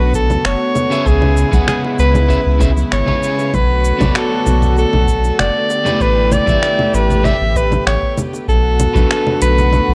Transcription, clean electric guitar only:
0, 0, Header, 1, 2, 480
1, 0, Start_track
1, 0, Key_signature, 2, "minor"
1, 0, Tempo, 618557
1, 824, Time_signature, 4, 2, 24, 8
1, 7713, End_track
2, 0, Start_track
2, 0, Title_t, "Clean electric guitar"
2, 0, Program_c, 0, 27
2, 0, Note_on_c, 0, 59, 77
2, 0, Note_on_c, 0, 62, 86
2, 0, Note_on_c, 0, 66, 71
2, 0, Note_on_c, 0, 69, 72
2, 0, Note_on_c, 0, 73, 72
2, 673, Note_off_c, 0, 59, 0
2, 677, Note_off_c, 0, 66, 0
2, 680, Note_off_c, 0, 69, 0
2, 683, Note_off_c, 0, 73, 0
2, 687, Note_off_c, 0, 62, 0
2, 698, Note_on_c, 0, 49, 86
2, 701, Note_on_c, 0, 61, 84
2, 705, Note_on_c, 0, 68, 82
2, 708, Note_on_c, 0, 71, 81
2, 715, Note_on_c, 0, 76, 96
2, 1153, Note_off_c, 0, 49, 0
2, 1155, Note_off_c, 0, 61, 0
2, 1157, Note_off_c, 0, 68, 0
2, 1159, Note_off_c, 0, 71, 0
2, 1160, Note_off_c, 0, 76, 0
2, 1172, Note_on_c, 0, 49, 72
2, 1179, Note_on_c, 0, 61, 68
2, 1185, Note_on_c, 0, 68, 65
2, 1191, Note_on_c, 0, 71, 67
2, 1197, Note_on_c, 0, 78, 80
2, 1748, Note_off_c, 0, 49, 0
2, 1751, Note_off_c, 0, 61, 0
2, 1754, Note_off_c, 0, 68, 0
2, 1757, Note_off_c, 0, 71, 0
2, 1760, Note_off_c, 0, 78, 0
2, 1773, Note_on_c, 0, 49, 86
2, 1775, Note_on_c, 0, 61, 80
2, 1782, Note_on_c, 0, 68, 72
2, 1782, Note_on_c, 0, 71, 85
2, 1785, Note_on_c, 0, 76, 102
2, 1855, Note_off_c, 0, 49, 0
2, 1857, Note_off_c, 0, 61, 0
2, 1859, Note_off_c, 0, 68, 0
2, 1860, Note_off_c, 0, 71, 0
2, 1862, Note_off_c, 0, 76, 0
2, 2012, Note_on_c, 0, 49, 91
2, 2015, Note_on_c, 0, 61, 82
2, 2021, Note_on_c, 0, 68, 73
2, 2022, Note_on_c, 0, 71, 85
2, 2026, Note_on_c, 0, 76, 102
2, 2095, Note_off_c, 0, 49, 0
2, 2097, Note_off_c, 0, 61, 0
2, 2098, Note_off_c, 0, 68, 0
2, 2100, Note_off_c, 0, 71, 0
2, 2102, Note_off_c, 0, 76, 0
2, 2375, Note_on_c, 0, 49, 78
2, 2381, Note_on_c, 0, 61, 71
2, 2382, Note_on_c, 0, 68, 74
2, 2386, Note_on_c, 0, 71, 72
2, 2390, Note_on_c, 0, 73, 84
2, 2724, Note_off_c, 0, 49, 0
2, 2725, Note_off_c, 0, 61, 0
2, 2726, Note_off_c, 0, 68, 0
2, 2729, Note_off_c, 0, 71, 0
2, 2729, Note_off_c, 0, 73, 0
2, 3092, Note_on_c, 0, 59, 78
2, 3097, Note_on_c, 0, 66, 71
2, 3102, Note_on_c, 0, 69, 73
2, 3110, Note_on_c, 0, 73, 70
2, 3118, Note_on_c, 0, 74, 83
2, 4401, Note_off_c, 0, 59, 0
2, 4404, Note_off_c, 0, 66, 0
2, 4407, Note_off_c, 0, 69, 0
2, 4411, Note_off_c, 0, 73, 0
2, 4415, Note_off_c, 0, 74, 0
2, 4538, Note_on_c, 0, 57, 90
2, 4541, Note_on_c, 0, 64, 86
2, 4545, Note_on_c, 0, 67, 90
2, 4549, Note_on_c, 0, 71, 92
2, 4552, Note_on_c, 0, 74, 101
2, 4993, Note_off_c, 0, 57, 0
2, 4995, Note_off_c, 0, 64, 0
2, 4997, Note_off_c, 0, 67, 0
2, 4999, Note_off_c, 0, 71, 0
2, 5000, Note_off_c, 0, 74, 0
2, 5012, Note_on_c, 0, 57, 70
2, 5018, Note_on_c, 0, 64, 67
2, 5026, Note_on_c, 0, 67, 64
2, 5034, Note_on_c, 0, 71, 64
2, 5038, Note_on_c, 0, 76, 76
2, 5588, Note_off_c, 0, 57, 0
2, 5591, Note_off_c, 0, 64, 0
2, 5595, Note_off_c, 0, 67, 0
2, 5599, Note_off_c, 0, 71, 0
2, 5601, Note_off_c, 0, 76, 0
2, 5610, Note_on_c, 0, 57, 94
2, 5615, Note_on_c, 0, 64, 67
2, 5616, Note_on_c, 0, 67, 84
2, 5621, Note_on_c, 0, 71, 71
2, 5625, Note_on_c, 0, 74, 104
2, 5695, Note_off_c, 0, 57, 0
2, 5695, Note_off_c, 0, 64, 0
2, 5698, Note_off_c, 0, 67, 0
2, 5699, Note_off_c, 0, 71, 0
2, 5702, Note_off_c, 0, 74, 0
2, 6931, Note_on_c, 0, 59, 72
2, 6940, Note_on_c, 0, 66, 68
2, 6944, Note_on_c, 0, 69, 72
2, 6951, Note_on_c, 0, 71, 75
2, 6959, Note_on_c, 0, 62, 83
2, 7713, Note_off_c, 0, 59, 0
2, 7713, Note_off_c, 0, 62, 0
2, 7713, Note_off_c, 0, 66, 0
2, 7713, Note_off_c, 0, 69, 0
2, 7713, Note_off_c, 0, 71, 0
2, 7713, End_track
0, 0, End_of_file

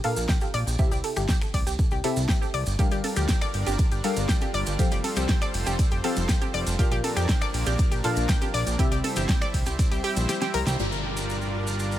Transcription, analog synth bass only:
0, 0, Header, 1, 2, 480
1, 0, Start_track
1, 0, Tempo, 500000
1, 758, Time_signature, 4, 2, 24, 8
1, 11509, End_track
2, 0, Start_track
2, 0, Title_t, "Analog synth bass"
2, 0, Program_c, 0, 38
2, 160, Note_on_c, 0, 34, 80
2, 254, Note_off_c, 0, 34, 0
2, 518, Note_on_c, 0, 34, 86
2, 614, Note_off_c, 0, 34, 0
2, 640, Note_on_c, 0, 34, 84
2, 734, Note_off_c, 0, 34, 0
2, 879, Note_on_c, 0, 36, 77
2, 974, Note_off_c, 0, 36, 0
2, 1120, Note_on_c, 0, 31, 88
2, 1214, Note_off_c, 0, 31, 0
2, 1478, Note_on_c, 0, 36, 89
2, 1574, Note_off_c, 0, 36, 0
2, 1599, Note_on_c, 0, 36, 82
2, 1694, Note_off_c, 0, 36, 0
2, 1839, Note_on_c, 0, 36, 74
2, 1934, Note_off_c, 0, 36, 0
2, 2079, Note_on_c, 0, 36, 81
2, 2174, Note_off_c, 0, 36, 0
2, 2437, Note_on_c, 0, 36, 90
2, 2534, Note_off_c, 0, 36, 0
2, 2559, Note_on_c, 0, 31, 84
2, 2654, Note_off_c, 0, 31, 0
2, 2799, Note_on_c, 0, 31, 80
2, 2894, Note_off_c, 0, 31, 0
2, 3040, Note_on_c, 0, 38, 88
2, 3134, Note_off_c, 0, 38, 0
2, 3398, Note_on_c, 0, 31, 86
2, 3494, Note_off_c, 0, 31, 0
2, 3519, Note_on_c, 0, 31, 82
2, 3614, Note_off_c, 0, 31, 0
2, 3759, Note_on_c, 0, 31, 74
2, 3854, Note_off_c, 0, 31, 0
2, 3999, Note_on_c, 0, 31, 76
2, 4094, Note_off_c, 0, 31, 0
2, 4358, Note_on_c, 0, 31, 88
2, 4454, Note_off_c, 0, 31, 0
2, 4479, Note_on_c, 0, 31, 84
2, 4574, Note_off_c, 0, 31, 0
2, 4719, Note_on_c, 0, 29, 79
2, 4814, Note_off_c, 0, 29, 0
2, 4959, Note_on_c, 0, 36, 83
2, 5054, Note_off_c, 0, 36, 0
2, 5319, Note_on_c, 0, 29, 87
2, 5415, Note_off_c, 0, 29, 0
2, 5439, Note_on_c, 0, 29, 81
2, 5534, Note_off_c, 0, 29, 0
2, 5680, Note_on_c, 0, 29, 78
2, 5774, Note_off_c, 0, 29, 0
2, 5919, Note_on_c, 0, 29, 79
2, 6014, Note_off_c, 0, 29, 0
2, 6278, Note_on_c, 0, 29, 90
2, 6374, Note_off_c, 0, 29, 0
2, 6399, Note_on_c, 0, 29, 83
2, 6494, Note_off_c, 0, 29, 0
2, 6638, Note_on_c, 0, 34, 79
2, 6734, Note_off_c, 0, 34, 0
2, 6878, Note_on_c, 0, 41, 86
2, 6973, Note_off_c, 0, 41, 0
2, 7237, Note_on_c, 0, 34, 85
2, 7333, Note_off_c, 0, 34, 0
2, 7357, Note_on_c, 0, 34, 84
2, 7453, Note_off_c, 0, 34, 0
2, 7598, Note_on_c, 0, 34, 72
2, 7693, Note_off_c, 0, 34, 0
2, 7839, Note_on_c, 0, 34, 80
2, 7934, Note_off_c, 0, 34, 0
2, 8198, Note_on_c, 0, 34, 87
2, 8294, Note_off_c, 0, 34, 0
2, 8318, Note_on_c, 0, 34, 84
2, 8414, Note_off_c, 0, 34, 0
2, 8557, Note_on_c, 0, 36, 81
2, 8653, Note_off_c, 0, 36, 0
2, 8799, Note_on_c, 0, 31, 83
2, 8894, Note_off_c, 0, 31, 0
2, 9158, Note_on_c, 0, 36, 88
2, 9254, Note_off_c, 0, 36, 0
2, 9279, Note_on_c, 0, 36, 85
2, 9374, Note_off_c, 0, 36, 0
2, 9519, Note_on_c, 0, 36, 76
2, 9614, Note_off_c, 0, 36, 0
2, 9758, Note_on_c, 0, 34, 85
2, 9854, Note_off_c, 0, 34, 0
2, 10118, Note_on_c, 0, 36, 89
2, 10214, Note_off_c, 0, 36, 0
2, 10239, Note_on_c, 0, 36, 81
2, 10334, Note_off_c, 0, 36, 0
2, 10358, Note_on_c, 0, 31, 83
2, 11509, Note_off_c, 0, 31, 0
2, 11509, End_track
0, 0, End_of_file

